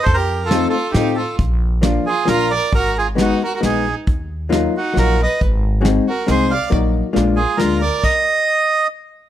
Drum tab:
CC |------|------|------|------|
HH |x-x-x-|x-x-x-|x-x-x-|x-x-x-|
SD |--o-o-|--o-o-|--o-o-|--o-o-|
BD |o-----|o-----|o-----|o-----|

CC |------|------|x-----|
HH |x-x-x-|x-x-x-|------|
SD |--o-o-|--o-o-|------|
BD |o-----|o-----|o-----|